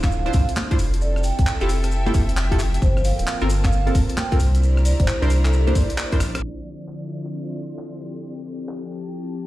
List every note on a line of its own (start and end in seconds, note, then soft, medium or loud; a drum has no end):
0.00 0.30 D1 medium
0.00 4.36 C4 medium
0.00 1.57 D4 medium
0.00 2.78 E4 medium
0.00 0.77 F4 medium
0.00 4.36 A4 medium
0.00 1.63 C5 medium
0.00 0.08 F5 medium
0.00 kick medium
0.00 cross-stick soft
0.00 clap medium
0.00 closed hi-hat medium
0.00 maracas soft
0.11 0.21 F5 medium
0.11 maracas soft
0.26 0.43 D4 medium
0.26 0.43 E4 medium
0.26 0.43 F4 medium
0.26 0.43 C5 medium
0.26 0.31 F5 medium
0.26 closed hi-hat soft
0.26 maracas soft
0.33 0.44 C2 medium
0.33 kick loud
0.33 open hi-hat loud
0.33 maracas loud
0.49 closed hi-hat medium
0.49 maracas soft
0.56 clap loud
0.56 high conga medium
0.56 maracas medium
0.71 0.78 D4 medium
0.71 0.78 E4 medium
0.71 0.78 F4 medium
0.71 0.78 C5 medium
0.71 kick loud
0.71 closed hi-hat medium
0.71 maracas soft
0.79 1.32 F1 loud
0.79 4.40 F3 medium
0.79 2.80 G4 medium
0.79 open hi-hat loud
0.79 maracas medium
0.93 closed hi-hat medium
0.93 maracas soft
1.00 2.82 A4 medium
1.00 1.18 D5 medium
1.00 maracas medium
1.10 3.47 G5 medium
1.16 cross-stick soft
1.16 maracas soft
1.23 1.33 G5 medium
1.23 open hi-hat loud
1.23 maracas medium
1.35 1.44 C2 medium
1.35 3.47 E5 medium
1.35 1.44 G5 medium
1.35 kick loud
1.35 closed hi-hat medium
1.35 maracas soft
1.47 clap loud
1.47 maracas medium
1.60 2.11 F1 medium
1.60 1.69 E4 medium
1.60 1.69 F4 medium
1.60 1.69 G4 medium
1.60 1.69 A4 loud
1.60 closed hi-hat soft
1.60 maracas soft
1.69 open hi-hat loud
1.69 maracas medium
1.83 cross-stick soft
1.83 closed hi-hat medium
1.83 maracas soft
1.91 maracas medium
2.06 2.23 E4 medium
2.06 2.23 F4 medium
2.06 2.23 G4 medium
2.06 2.23 A4 medium
2.06 closed hi-hat soft
2.06 high conga medium
2.06 maracas soft
2.14 2.78 F1 loud
2.14 kick loud
2.14 open hi-hat loud
2.14 maracas medium
2.29 closed hi-hat medium
2.29 maracas soft
2.37 clap loud
2.37 open hi-hat medium
2.37 maracas medium
2.52 2.60 E4 medium
2.52 2.60 F4 medium
2.52 2.60 G4 medium
2.52 2.60 A4 medium
2.52 kick medium
2.52 closed hi-hat medium
2.52 maracas soft
2.59 clap medium
2.59 open hi-hat loud
2.59 maracas medium
2.74 closed hi-hat medium
2.74 maracas soft
2.82 3.12 G1 loud
2.82 6.39 A#3 medium
2.82 4.38 F4 medium
2.82 2.91 C5 medium
2.82 kick loud
2.82 maracas medium
2.97 5.02 A#3 medium
2.97 3.02 C5 medium
2.97 cross-stick soft
2.97 maracas soft
3.04 3.14 F5 medium
3.04 open hi-hat loud
3.04 maracas medium
3.19 3.25 D1 medium
3.19 3.24 F5 medium
3.19 closed hi-hat medium
3.19 maracas soft
3.27 7.08 C5 medium
3.27 clap loud
3.27 maracas medium
3.40 3.91 G1 medium
3.40 3.50 C4 loud
3.40 3.50 F4 medium
3.40 3.50 A4 medium
3.40 3.50 A#4 loud
3.40 maracas soft
3.50 open hi-hat loud
3.50 maracas medium
3.54 4.40 A5 medium
3.64 3.69 F5 medium
3.64 kick medium
3.64 cross-stick soft
3.64 clap medium
3.64 closed hi-hat medium
3.64 maracas soft
3.72 3.82 F5 medium
3.72 maracas soft
3.87 4.04 C4 medium
3.87 4.04 F4 medium
3.87 4.04 A4 medium
3.87 4.04 A#4 medium
3.87 closed hi-hat soft
3.87 maracas soft
3.95 4.05 F1 medium
3.95 kick loud
3.95 open hi-hat loud
3.95 maracas medium
4.09 closed hi-hat medium
4.09 maracas soft
4.17 4.34 G5 medium
4.17 clap loud
4.17 high conga medium
4.17 maracas soft
4.31 4.39 C4 medium
4.31 4.39 F4 medium
4.31 4.39 A4 medium
4.31 4.39 A#4 medium
4.31 kick loud
4.31 closed hi-hat medium
4.31 maracas soft
4.40 4.93 C2 loud
4.40 6.41 D4 medium
4.40 6.41 E4 medium
4.40 6.43 E4 medium
4.40 6.41 G4 medium
4.40 open hi-hat loud
4.40 maracas medium
4.55 closed hi-hat medium
4.55 maracas soft
4.60 8.85 D5 medium
4.60 6.43 A#5 medium
4.60 maracas soft
4.77 cross-stick soft
4.77 maracas soft
4.85 4.97 D5 medium
4.85 open hi-hat loud
4.85 maracas medium
5.00 5.05 G1 medium
5.00 5.05 C5 medium
5.00 kick loud
5.00 closed hi-hat medium
5.00 maracas soft
5.08 5.17 C5 medium
5.08 clap loud
5.08 maracas soft
5.22 5.71 C2 medium
5.22 5.30 D4 medium
5.22 5.30 E4 medium
5.22 5.30 A#4 medium
5.22 5.30 C5 loud
5.22 closed hi-hat soft
5.22 maracas soft
5.30 open hi-hat loud
5.30 maracas medium
5.45 5.50 A4 medium
5.45 cross-stick soft
5.45 clap medium
5.45 closed hi-hat medium
5.45 maracas soft
5.53 maracas soft
5.67 5.84 D4 medium
5.67 5.84 E4 medium
5.67 5.84 A#4 medium
5.67 5.84 C5 medium
5.67 closed hi-hat soft
5.67 high conga medium
5.67 maracas soft
5.75 5.85 D5 medium
5.75 kick loud
5.75 open hi-hat loud
5.75 maracas medium
5.90 5.95 D5 medium
5.90 closed hi-hat medium
5.90 maracas soft
5.98 clap loud
5.98 open hi-hat medium
5.98 maracas medium
6.12 6.21 D4 medium
6.12 6.21 E4 medium
6.12 6.21 A#4 medium
6.12 6.21 C5 loud
6.12 kick medium
6.12 closed hi-hat medium
6.12 maracas soft
6.20 6.38 A#1 loud
6.20 cross-stick medium
6.20 open hi-hat loud
6.20 maracas medium
6.35 cross-stick medium
6.35 closed hi-hat medium
6.35 maracas soft
6.43 7.99 D3 medium
6.43 8.68 F3 medium
6.43 9.47 C4 medium
6.43 9.47 E4 medium
6.43 7.99 F4 medium
6.43 9.47 A4 medium
6.55 8.01 E5 medium
6.88 clap loud
7.11 maracas medium
7.15 8.66 C6 medium
7.25 clap medium
7.33 maracas soft
7.56 maracas medium
7.78 clap loud
7.92 maracas soft
8.00 9.47 F3 medium
8.00 9.47 G4 medium
8.00 maracas medium
8.16 maracas soft
8.23 maracas medium
8.46 maracas medium
8.60 maracas soft
8.69 clap loud
8.83 maracas soft
8.91 9.47 A5 medium
8.91 maracas medium
9.06 maracas soft
9.13 maracas soft
9.28 maracas soft
9.35 maracas medium